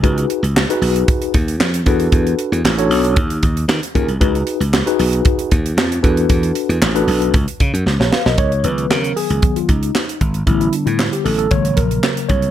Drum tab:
HH |xxxx-xoxxxxx-xxx|xxxx-xoxxxxx-xxx|xxxx-xoxxxxx-xxx|xxxx-xoxxxxx----|
CP |----x-------x---|----x-------x---|----x-------x---|----x-----------|
SD |----o-------o---|----o-------o---|----o-------o---|----o-------oooo|
BD |o-------o-o---o-|o-------o-o---o-|o-------o-o---o-|o-------o-o-----|

HH |xxxx-xoxxxxx-xxx|xxxx-xoxxxxx-xxx|
CP |----x-------x---|----x-------x---|
SD |----o-------o---|----o-------o---|
BD |o-------o-o---o-|o-------o-o---o-|